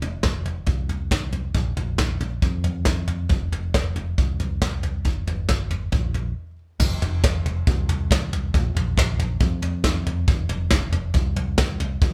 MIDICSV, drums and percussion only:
0, 0, Header, 1, 2, 480
1, 0, Start_track
1, 0, Tempo, 436364
1, 1702, Time_signature, 4, 2, 24, 8
1, 13346, End_track
2, 0, Start_track
2, 0, Title_t, "Drums"
2, 23, Note_on_c, 9, 43, 90
2, 133, Note_off_c, 9, 43, 0
2, 254, Note_on_c, 9, 38, 104
2, 254, Note_on_c, 9, 43, 82
2, 259, Note_on_c, 9, 36, 105
2, 364, Note_off_c, 9, 38, 0
2, 364, Note_off_c, 9, 43, 0
2, 369, Note_off_c, 9, 36, 0
2, 501, Note_on_c, 9, 43, 73
2, 611, Note_off_c, 9, 43, 0
2, 731, Note_on_c, 9, 43, 77
2, 738, Note_on_c, 9, 36, 112
2, 841, Note_off_c, 9, 43, 0
2, 848, Note_off_c, 9, 36, 0
2, 981, Note_on_c, 9, 43, 72
2, 1091, Note_off_c, 9, 43, 0
2, 1222, Note_on_c, 9, 36, 89
2, 1226, Note_on_c, 9, 38, 100
2, 1226, Note_on_c, 9, 43, 70
2, 1332, Note_off_c, 9, 36, 0
2, 1336, Note_off_c, 9, 38, 0
2, 1336, Note_off_c, 9, 43, 0
2, 1457, Note_on_c, 9, 43, 67
2, 1567, Note_off_c, 9, 43, 0
2, 1698, Note_on_c, 9, 43, 87
2, 1701, Note_on_c, 9, 36, 97
2, 1808, Note_off_c, 9, 43, 0
2, 1811, Note_off_c, 9, 36, 0
2, 1945, Note_on_c, 9, 43, 86
2, 2055, Note_off_c, 9, 43, 0
2, 2181, Note_on_c, 9, 38, 107
2, 2181, Note_on_c, 9, 43, 81
2, 2184, Note_on_c, 9, 36, 98
2, 2291, Note_off_c, 9, 38, 0
2, 2291, Note_off_c, 9, 43, 0
2, 2294, Note_off_c, 9, 36, 0
2, 2426, Note_on_c, 9, 43, 82
2, 2536, Note_off_c, 9, 43, 0
2, 2666, Note_on_c, 9, 36, 103
2, 2666, Note_on_c, 9, 43, 82
2, 2776, Note_off_c, 9, 36, 0
2, 2776, Note_off_c, 9, 43, 0
2, 2904, Note_on_c, 9, 43, 80
2, 3014, Note_off_c, 9, 43, 0
2, 3137, Note_on_c, 9, 38, 96
2, 3137, Note_on_c, 9, 43, 70
2, 3146, Note_on_c, 9, 36, 103
2, 3247, Note_off_c, 9, 38, 0
2, 3247, Note_off_c, 9, 43, 0
2, 3256, Note_off_c, 9, 36, 0
2, 3384, Note_on_c, 9, 43, 76
2, 3494, Note_off_c, 9, 43, 0
2, 3622, Note_on_c, 9, 43, 80
2, 3630, Note_on_c, 9, 36, 110
2, 3732, Note_off_c, 9, 43, 0
2, 3740, Note_off_c, 9, 36, 0
2, 3877, Note_on_c, 9, 43, 82
2, 3987, Note_off_c, 9, 43, 0
2, 4117, Note_on_c, 9, 36, 106
2, 4117, Note_on_c, 9, 38, 98
2, 4117, Note_on_c, 9, 43, 78
2, 4227, Note_off_c, 9, 36, 0
2, 4227, Note_off_c, 9, 38, 0
2, 4227, Note_off_c, 9, 43, 0
2, 4354, Note_on_c, 9, 43, 76
2, 4464, Note_off_c, 9, 43, 0
2, 4600, Note_on_c, 9, 36, 101
2, 4602, Note_on_c, 9, 43, 75
2, 4710, Note_off_c, 9, 36, 0
2, 4712, Note_off_c, 9, 43, 0
2, 4837, Note_on_c, 9, 43, 74
2, 4947, Note_off_c, 9, 43, 0
2, 5078, Note_on_c, 9, 38, 101
2, 5078, Note_on_c, 9, 43, 77
2, 5079, Note_on_c, 9, 36, 104
2, 5188, Note_off_c, 9, 38, 0
2, 5188, Note_off_c, 9, 43, 0
2, 5189, Note_off_c, 9, 36, 0
2, 5315, Note_on_c, 9, 43, 79
2, 5425, Note_off_c, 9, 43, 0
2, 5551, Note_on_c, 9, 43, 75
2, 5558, Note_on_c, 9, 36, 102
2, 5661, Note_off_c, 9, 43, 0
2, 5668, Note_off_c, 9, 36, 0
2, 5802, Note_on_c, 9, 43, 82
2, 5912, Note_off_c, 9, 43, 0
2, 6034, Note_on_c, 9, 38, 101
2, 6034, Note_on_c, 9, 43, 93
2, 6039, Note_on_c, 9, 36, 106
2, 6144, Note_off_c, 9, 38, 0
2, 6144, Note_off_c, 9, 43, 0
2, 6149, Note_off_c, 9, 36, 0
2, 6276, Note_on_c, 9, 43, 82
2, 6386, Note_off_c, 9, 43, 0
2, 6513, Note_on_c, 9, 43, 81
2, 6520, Note_on_c, 9, 36, 106
2, 6623, Note_off_c, 9, 43, 0
2, 6630, Note_off_c, 9, 36, 0
2, 6758, Note_on_c, 9, 43, 76
2, 6868, Note_off_c, 9, 43, 0
2, 7476, Note_on_c, 9, 43, 87
2, 7476, Note_on_c, 9, 49, 113
2, 7481, Note_on_c, 9, 36, 111
2, 7586, Note_off_c, 9, 43, 0
2, 7586, Note_off_c, 9, 49, 0
2, 7591, Note_off_c, 9, 36, 0
2, 7722, Note_on_c, 9, 43, 96
2, 7832, Note_off_c, 9, 43, 0
2, 7961, Note_on_c, 9, 36, 124
2, 7963, Note_on_c, 9, 38, 117
2, 7963, Note_on_c, 9, 43, 104
2, 8071, Note_off_c, 9, 36, 0
2, 8073, Note_off_c, 9, 38, 0
2, 8073, Note_off_c, 9, 43, 0
2, 8203, Note_on_c, 9, 43, 91
2, 8313, Note_off_c, 9, 43, 0
2, 8439, Note_on_c, 9, 36, 120
2, 8439, Note_on_c, 9, 43, 85
2, 8549, Note_off_c, 9, 36, 0
2, 8549, Note_off_c, 9, 43, 0
2, 8679, Note_on_c, 9, 43, 99
2, 8789, Note_off_c, 9, 43, 0
2, 8919, Note_on_c, 9, 36, 111
2, 8928, Note_on_c, 9, 38, 110
2, 8928, Note_on_c, 9, 43, 89
2, 9029, Note_off_c, 9, 36, 0
2, 9038, Note_off_c, 9, 38, 0
2, 9038, Note_off_c, 9, 43, 0
2, 9162, Note_on_c, 9, 43, 88
2, 9272, Note_off_c, 9, 43, 0
2, 9396, Note_on_c, 9, 36, 115
2, 9401, Note_on_c, 9, 43, 97
2, 9506, Note_off_c, 9, 36, 0
2, 9511, Note_off_c, 9, 43, 0
2, 9641, Note_on_c, 9, 43, 101
2, 9751, Note_off_c, 9, 43, 0
2, 9873, Note_on_c, 9, 36, 126
2, 9883, Note_on_c, 9, 38, 123
2, 9883, Note_on_c, 9, 43, 103
2, 9983, Note_off_c, 9, 36, 0
2, 9993, Note_off_c, 9, 38, 0
2, 9993, Note_off_c, 9, 43, 0
2, 10114, Note_on_c, 9, 43, 92
2, 10224, Note_off_c, 9, 43, 0
2, 10344, Note_on_c, 9, 43, 89
2, 10347, Note_on_c, 9, 36, 118
2, 10454, Note_off_c, 9, 43, 0
2, 10457, Note_off_c, 9, 36, 0
2, 10585, Note_on_c, 9, 43, 96
2, 10695, Note_off_c, 9, 43, 0
2, 10822, Note_on_c, 9, 38, 120
2, 10822, Note_on_c, 9, 43, 89
2, 10825, Note_on_c, 9, 36, 121
2, 10932, Note_off_c, 9, 38, 0
2, 10932, Note_off_c, 9, 43, 0
2, 10935, Note_off_c, 9, 36, 0
2, 11072, Note_on_c, 9, 43, 89
2, 11182, Note_off_c, 9, 43, 0
2, 11306, Note_on_c, 9, 36, 116
2, 11307, Note_on_c, 9, 43, 89
2, 11416, Note_off_c, 9, 36, 0
2, 11417, Note_off_c, 9, 43, 0
2, 11541, Note_on_c, 9, 43, 91
2, 11651, Note_off_c, 9, 43, 0
2, 11776, Note_on_c, 9, 38, 127
2, 11776, Note_on_c, 9, 43, 100
2, 11783, Note_on_c, 9, 36, 120
2, 11886, Note_off_c, 9, 38, 0
2, 11886, Note_off_c, 9, 43, 0
2, 11893, Note_off_c, 9, 36, 0
2, 12017, Note_on_c, 9, 43, 99
2, 12127, Note_off_c, 9, 43, 0
2, 12253, Note_on_c, 9, 43, 88
2, 12261, Note_on_c, 9, 36, 105
2, 12363, Note_off_c, 9, 43, 0
2, 12371, Note_off_c, 9, 36, 0
2, 12500, Note_on_c, 9, 43, 86
2, 12610, Note_off_c, 9, 43, 0
2, 12736, Note_on_c, 9, 38, 116
2, 12736, Note_on_c, 9, 43, 91
2, 12741, Note_on_c, 9, 36, 121
2, 12846, Note_off_c, 9, 38, 0
2, 12846, Note_off_c, 9, 43, 0
2, 12851, Note_off_c, 9, 36, 0
2, 12981, Note_on_c, 9, 43, 94
2, 13091, Note_off_c, 9, 43, 0
2, 13218, Note_on_c, 9, 36, 118
2, 13220, Note_on_c, 9, 43, 90
2, 13328, Note_off_c, 9, 36, 0
2, 13330, Note_off_c, 9, 43, 0
2, 13346, End_track
0, 0, End_of_file